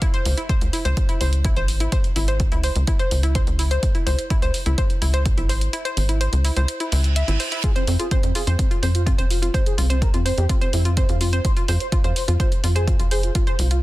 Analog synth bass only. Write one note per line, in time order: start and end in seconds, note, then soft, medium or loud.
0.26 0.35 C#2 loud
0.61 0.70 C#2 medium
0.85 0.94 C#2 medium
1.21 1.52 C#2 medium
1.57 1.88 G#1 medium
2.16 2.47 G#1 loud
2.52 2.70 C#2 medium
2.76 2.85 C#2 loud
3.11 3.42 C#2 medium
3.47 3.78 C#2 loud
4.07 4.16 C#2 loud
4.42 4.51 C#2 medium
4.66 4.75 C#2 medium
5.02 5.33 C#2 medium
5.38 5.69 G#1 medium
5.97 6.28 G#1 loud
6.33 6.51 C#2 medium
6.57 6.66 C#2 loud
6.92 7.23 C#2 loud
7.28 7.37 G#1 loud
7.87 7.97 F2 loud
8.23 8.32 F2 medium
8.47 8.56 F2 medium
8.83 9.14 F2 medium
9.19 9.50 F1 medium
9.78 10.09 C2 loud
10.14 10.32 F2 medium
10.38 10.47 F2 loud
10.73 11.04 F2 medium
11.09 11.40 F2 loud
11.69 11.78 F2 loud
12.04 12.13 F2 medium
12.28 12.37 F2 medium
12.64 12.95 F2 medium
12.99 13.30 F1 medium
13.59 13.83 C2 loud